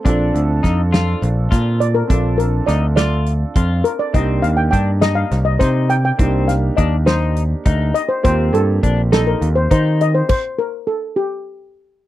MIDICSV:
0, 0, Header, 1, 6, 480
1, 0, Start_track
1, 0, Tempo, 585366
1, 42, Time_signature, 7, 3, 24, 8
1, 9902, End_track
2, 0, Start_track
2, 0, Title_t, "Steel pan"
2, 0, Program_c, 0, 114
2, 1479, Note_on_c, 0, 74, 85
2, 1595, Note_on_c, 0, 70, 79
2, 1603, Note_off_c, 0, 74, 0
2, 1940, Note_off_c, 0, 70, 0
2, 1949, Note_on_c, 0, 70, 73
2, 2177, Note_off_c, 0, 70, 0
2, 2185, Note_on_c, 0, 74, 71
2, 2415, Note_off_c, 0, 74, 0
2, 2429, Note_on_c, 0, 74, 80
2, 3150, Note_on_c, 0, 70, 77
2, 3175, Note_off_c, 0, 74, 0
2, 3206, Note_off_c, 0, 70, 0
2, 3275, Note_on_c, 0, 74, 79
2, 3329, Note_off_c, 0, 74, 0
2, 3398, Note_on_c, 0, 75, 84
2, 3506, Note_off_c, 0, 75, 0
2, 3628, Note_on_c, 0, 77, 81
2, 3744, Note_off_c, 0, 77, 0
2, 3744, Note_on_c, 0, 79, 80
2, 3802, Note_off_c, 0, 79, 0
2, 3860, Note_on_c, 0, 79, 81
2, 4112, Note_on_c, 0, 75, 86
2, 4117, Note_off_c, 0, 79, 0
2, 4225, Note_on_c, 0, 77, 84
2, 4227, Note_off_c, 0, 75, 0
2, 4468, Note_on_c, 0, 75, 80
2, 4479, Note_off_c, 0, 77, 0
2, 4586, Note_on_c, 0, 72, 81
2, 4597, Note_off_c, 0, 75, 0
2, 4835, Note_on_c, 0, 79, 87
2, 4840, Note_off_c, 0, 72, 0
2, 4951, Note_off_c, 0, 79, 0
2, 4960, Note_on_c, 0, 79, 85
2, 5312, Note_on_c, 0, 77, 74
2, 5330, Note_off_c, 0, 79, 0
2, 5549, Note_on_c, 0, 75, 72
2, 5563, Note_off_c, 0, 77, 0
2, 5792, Note_on_c, 0, 72, 84
2, 5801, Note_off_c, 0, 75, 0
2, 6514, Note_on_c, 0, 75, 88
2, 6538, Note_off_c, 0, 72, 0
2, 6631, Note_on_c, 0, 72, 72
2, 6641, Note_off_c, 0, 75, 0
2, 6747, Note_off_c, 0, 72, 0
2, 6757, Note_on_c, 0, 72, 86
2, 7002, Note_on_c, 0, 69, 83
2, 7006, Note_off_c, 0, 72, 0
2, 7471, Note_off_c, 0, 69, 0
2, 7481, Note_on_c, 0, 69, 74
2, 7602, Note_on_c, 0, 70, 72
2, 7604, Note_off_c, 0, 69, 0
2, 7835, Note_on_c, 0, 72, 73
2, 7848, Note_off_c, 0, 70, 0
2, 7949, Note_off_c, 0, 72, 0
2, 7965, Note_on_c, 0, 72, 76
2, 8210, Note_off_c, 0, 72, 0
2, 8211, Note_on_c, 0, 75, 81
2, 8319, Note_on_c, 0, 72, 73
2, 8330, Note_off_c, 0, 75, 0
2, 8427, Note_off_c, 0, 72, 0
2, 8437, Note_on_c, 0, 72, 80
2, 8679, Note_on_c, 0, 70, 70
2, 8687, Note_off_c, 0, 72, 0
2, 8788, Note_off_c, 0, 70, 0
2, 8913, Note_on_c, 0, 69, 62
2, 9023, Note_off_c, 0, 69, 0
2, 9153, Note_on_c, 0, 67, 60
2, 9845, Note_off_c, 0, 67, 0
2, 9902, End_track
3, 0, Start_track
3, 0, Title_t, "Clean electric guitar"
3, 0, Program_c, 1, 27
3, 39, Note_on_c, 1, 62, 74
3, 330, Note_off_c, 1, 62, 0
3, 516, Note_on_c, 1, 63, 68
3, 663, Note_off_c, 1, 63, 0
3, 758, Note_on_c, 1, 65, 74
3, 1049, Note_off_c, 1, 65, 0
3, 1236, Note_on_c, 1, 65, 69
3, 1528, Note_off_c, 1, 65, 0
3, 1721, Note_on_c, 1, 62, 66
3, 2011, Note_off_c, 1, 62, 0
3, 2193, Note_on_c, 1, 63, 67
3, 2340, Note_off_c, 1, 63, 0
3, 2435, Note_on_c, 1, 65, 79
3, 2726, Note_off_c, 1, 65, 0
3, 2919, Note_on_c, 1, 65, 67
3, 3209, Note_off_c, 1, 65, 0
3, 3395, Note_on_c, 1, 60, 72
3, 3687, Note_off_c, 1, 60, 0
3, 3873, Note_on_c, 1, 62, 68
3, 4020, Note_off_c, 1, 62, 0
3, 4115, Note_on_c, 1, 63, 73
3, 4406, Note_off_c, 1, 63, 0
3, 4591, Note_on_c, 1, 63, 78
3, 4883, Note_off_c, 1, 63, 0
3, 5074, Note_on_c, 1, 60, 74
3, 5366, Note_off_c, 1, 60, 0
3, 5554, Note_on_c, 1, 62, 71
3, 5701, Note_off_c, 1, 62, 0
3, 5796, Note_on_c, 1, 63, 78
3, 6087, Note_off_c, 1, 63, 0
3, 6278, Note_on_c, 1, 63, 77
3, 6569, Note_off_c, 1, 63, 0
3, 6764, Note_on_c, 1, 60, 74
3, 7053, Note_off_c, 1, 60, 0
3, 7242, Note_on_c, 1, 62, 71
3, 7387, Note_off_c, 1, 62, 0
3, 7481, Note_on_c, 1, 63, 78
3, 7771, Note_off_c, 1, 63, 0
3, 7960, Note_on_c, 1, 63, 80
3, 8251, Note_off_c, 1, 63, 0
3, 9902, End_track
4, 0, Start_track
4, 0, Title_t, "Grand piano"
4, 0, Program_c, 2, 0
4, 34, Note_on_c, 2, 60, 59
4, 44, Note_on_c, 2, 62, 62
4, 52, Note_on_c, 2, 65, 56
4, 60, Note_on_c, 2, 69, 69
4, 1683, Note_off_c, 2, 60, 0
4, 1688, Note_off_c, 2, 62, 0
4, 1692, Note_off_c, 2, 65, 0
4, 1696, Note_off_c, 2, 69, 0
4, 1701, Note_on_c, 2, 60, 54
4, 1712, Note_on_c, 2, 62, 50
4, 1721, Note_on_c, 2, 65, 50
4, 1734, Note_on_c, 2, 69, 59
4, 3356, Note_off_c, 2, 60, 0
4, 3362, Note_off_c, 2, 62, 0
4, 3366, Note_off_c, 2, 65, 0
4, 3373, Note_off_c, 2, 69, 0
4, 3387, Note_on_c, 2, 58, 55
4, 3396, Note_on_c, 2, 62, 47
4, 3404, Note_on_c, 2, 63, 50
4, 3416, Note_on_c, 2, 67, 58
4, 5040, Note_off_c, 2, 58, 0
4, 5045, Note_off_c, 2, 62, 0
4, 5049, Note_off_c, 2, 63, 0
4, 5055, Note_off_c, 2, 67, 0
4, 5067, Note_on_c, 2, 58, 49
4, 5078, Note_on_c, 2, 62, 47
4, 5084, Note_on_c, 2, 63, 46
4, 5095, Note_on_c, 2, 67, 62
4, 6721, Note_off_c, 2, 58, 0
4, 6727, Note_off_c, 2, 62, 0
4, 6730, Note_off_c, 2, 63, 0
4, 6735, Note_off_c, 2, 67, 0
4, 6748, Note_on_c, 2, 58, 56
4, 6760, Note_on_c, 2, 60, 55
4, 6766, Note_on_c, 2, 65, 50
4, 6779, Note_on_c, 2, 67, 65
4, 8403, Note_off_c, 2, 58, 0
4, 8408, Note_off_c, 2, 60, 0
4, 8411, Note_off_c, 2, 65, 0
4, 8418, Note_off_c, 2, 67, 0
4, 9902, End_track
5, 0, Start_track
5, 0, Title_t, "Picked electric bass"
5, 0, Program_c, 3, 34
5, 45, Note_on_c, 3, 34, 86
5, 248, Note_off_c, 3, 34, 0
5, 283, Note_on_c, 3, 38, 70
5, 487, Note_off_c, 3, 38, 0
5, 525, Note_on_c, 3, 41, 77
5, 933, Note_off_c, 3, 41, 0
5, 1003, Note_on_c, 3, 34, 91
5, 1207, Note_off_c, 3, 34, 0
5, 1245, Note_on_c, 3, 46, 78
5, 1652, Note_off_c, 3, 46, 0
5, 1721, Note_on_c, 3, 34, 77
5, 2130, Note_off_c, 3, 34, 0
5, 2199, Note_on_c, 3, 38, 84
5, 2814, Note_off_c, 3, 38, 0
5, 2918, Note_on_c, 3, 41, 81
5, 3123, Note_off_c, 3, 41, 0
5, 3396, Note_on_c, 3, 36, 89
5, 3602, Note_off_c, 3, 36, 0
5, 3635, Note_on_c, 3, 39, 73
5, 3842, Note_off_c, 3, 39, 0
5, 3877, Note_on_c, 3, 43, 75
5, 4288, Note_off_c, 3, 43, 0
5, 4358, Note_on_c, 3, 36, 83
5, 4563, Note_off_c, 3, 36, 0
5, 4598, Note_on_c, 3, 48, 77
5, 5008, Note_off_c, 3, 48, 0
5, 5078, Note_on_c, 3, 36, 82
5, 5488, Note_off_c, 3, 36, 0
5, 5561, Note_on_c, 3, 39, 86
5, 6175, Note_off_c, 3, 39, 0
5, 6281, Note_on_c, 3, 38, 86
5, 6485, Note_off_c, 3, 38, 0
5, 6764, Note_on_c, 3, 39, 91
5, 6967, Note_off_c, 3, 39, 0
5, 6995, Note_on_c, 3, 43, 76
5, 7202, Note_off_c, 3, 43, 0
5, 7243, Note_on_c, 3, 34, 78
5, 7652, Note_off_c, 3, 34, 0
5, 7720, Note_on_c, 3, 39, 82
5, 7925, Note_off_c, 3, 39, 0
5, 7963, Note_on_c, 3, 51, 81
5, 8373, Note_off_c, 3, 51, 0
5, 9902, End_track
6, 0, Start_track
6, 0, Title_t, "Drums"
6, 46, Note_on_c, 9, 36, 85
6, 49, Note_on_c, 9, 42, 64
6, 128, Note_off_c, 9, 36, 0
6, 131, Note_off_c, 9, 42, 0
6, 290, Note_on_c, 9, 42, 52
6, 372, Note_off_c, 9, 42, 0
6, 525, Note_on_c, 9, 36, 59
6, 530, Note_on_c, 9, 38, 25
6, 530, Note_on_c, 9, 42, 46
6, 607, Note_off_c, 9, 36, 0
6, 612, Note_off_c, 9, 38, 0
6, 612, Note_off_c, 9, 42, 0
6, 770, Note_on_c, 9, 38, 89
6, 770, Note_on_c, 9, 42, 63
6, 852, Note_off_c, 9, 38, 0
6, 852, Note_off_c, 9, 42, 0
6, 1009, Note_on_c, 9, 42, 51
6, 1091, Note_off_c, 9, 42, 0
6, 1245, Note_on_c, 9, 36, 80
6, 1249, Note_on_c, 9, 38, 29
6, 1249, Note_on_c, 9, 42, 71
6, 1327, Note_off_c, 9, 36, 0
6, 1331, Note_off_c, 9, 38, 0
6, 1331, Note_off_c, 9, 42, 0
6, 1486, Note_on_c, 9, 42, 53
6, 1568, Note_off_c, 9, 42, 0
6, 1722, Note_on_c, 9, 36, 83
6, 1724, Note_on_c, 9, 42, 67
6, 1804, Note_off_c, 9, 36, 0
6, 1806, Note_off_c, 9, 42, 0
6, 1964, Note_on_c, 9, 42, 58
6, 2046, Note_off_c, 9, 42, 0
6, 2200, Note_on_c, 9, 38, 25
6, 2200, Note_on_c, 9, 42, 56
6, 2282, Note_off_c, 9, 38, 0
6, 2282, Note_off_c, 9, 42, 0
6, 2436, Note_on_c, 9, 38, 79
6, 2436, Note_on_c, 9, 42, 69
6, 2518, Note_off_c, 9, 38, 0
6, 2518, Note_off_c, 9, 42, 0
6, 2676, Note_on_c, 9, 42, 48
6, 2758, Note_off_c, 9, 42, 0
6, 2915, Note_on_c, 9, 42, 66
6, 2917, Note_on_c, 9, 36, 80
6, 2997, Note_off_c, 9, 42, 0
6, 2999, Note_off_c, 9, 36, 0
6, 3156, Note_on_c, 9, 42, 53
6, 3238, Note_off_c, 9, 42, 0
6, 3397, Note_on_c, 9, 42, 63
6, 3398, Note_on_c, 9, 36, 85
6, 3479, Note_off_c, 9, 42, 0
6, 3480, Note_off_c, 9, 36, 0
6, 3639, Note_on_c, 9, 42, 57
6, 3721, Note_off_c, 9, 42, 0
6, 3878, Note_on_c, 9, 36, 60
6, 3879, Note_on_c, 9, 42, 48
6, 3960, Note_off_c, 9, 36, 0
6, 3961, Note_off_c, 9, 42, 0
6, 4115, Note_on_c, 9, 38, 91
6, 4115, Note_on_c, 9, 42, 63
6, 4197, Note_off_c, 9, 38, 0
6, 4197, Note_off_c, 9, 42, 0
6, 4356, Note_on_c, 9, 38, 26
6, 4356, Note_on_c, 9, 42, 43
6, 4438, Note_off_c, 9, 38, 0
6, 4438, Note_off_c, 9, 42, 0
6, 4597, Note_on_c, 9, 38, 28
6, 4597, Note_on_c, 9, 42, 64
6, 4598, Note_on_c, 9, 36, 78
6, 4679, Note_off_c, 9, 38, 0
6, 4679, Note_off_c, 9, 42, 0
6, 4680, Note_off_c, 9, 36, 0
6, 4836, Note_on_c, 9, 42, 52
6, 4918, Note_off_c, 9, 42, 0
6, 5076, Note_on_c, 9, 42, 70
6, 5078, Note_on_c, 9, 36, 87
6, 5158, Note_off_c, 9, 42, 0
6, 5160, Note_off_c, 9, 36, 0
6, 5320, Note_on_c, 9, 38, 28
6, 5320, Note_on_c, 9, 42, 55
6, 5402, Note_off_c, 9, 38, 0
6, 5402, Note_off_c, 9, 42, 0
6, 5559, Note_on_c, 9, 42, 47
6, 5560, Note_on_c, 9, 36, 59
6, 5641, Note_off_c, 9, 42, 0
6, 5642, Note_off_c, 9, 36, 0
6, 5801, Note_on_c, 9, 38, 91
6, 5801, Note_on_c, 9, 42, 63
6, 5883, Note_off_c, 9, 38, 0
6, 5883, Note_off_c, 9, 42, 0
6, 6039, Note_on_c, 9, 42, 54
6, 6121, Note_off_c, 9, 42, 0
6, 6276, Note_on_c, 9, 42, 69
6, 6280, Note_on_c, 9, 36, 90
6, 6358, Note_off_c, 9, 42, 0
6, 6362, Note_off_c, 9, 36, 0
6, 6521, Note_on_c, 9, 42, 57
6, 6603, Note_off_c, 9, 42, 0
6, 6762, Note_on_c, 9, 36, 94
6, 6762, Note_on_c, 9, 42, 69
6, 6844, Note_off_c, 9, 36, 0
6, 6844, Note_off_c, 9, 42, 0
6, 7006, Note_on_c, 9, 42, 56
6, 7088, Note_off_c, 9, 42, 0
6, 7244, Note_on_c, 9, 36, 64
6, 7245, Note_on_c, 9, 42, 55
6, 7326, Note_off_c, 9, 36, 0
6, 7327, Note_off_c, 9, 42, 0
6, 7485, Note_on_c, 9, 38, 87
6, 7485, Note_on_c, 9, 42, 66
6, 7567, Note_off_c, 9, 38, 0
6, 7567, Note_off_c, 9, 42, 0
6, 7724, Note_on_c, 9, 42, 50
6, 7806, Note_off_c, 9, 42, 0
6, 7961, Note_on_c, 9, 42, 65
6, 7963, Note_on_c, 9, 36, 82
6, 8043, Note_off_c, 9, 42, 0
6, 8045, Note_off_c, 9, 36, 0
6, 8205, Note_on_c, 9, 42, 50
6, 8287, Note_off_c, 9, 42, 0
6, 8438, Note_on_c, 9, 49, 68
6, 8443, Note_on_c, 9, 36, 85
6, 8520, Note_off_c, 9, 49, 0
6, 8525, Note_off_c, 9, 36, 0
6, 9902, End_track
0, 0, End_of_file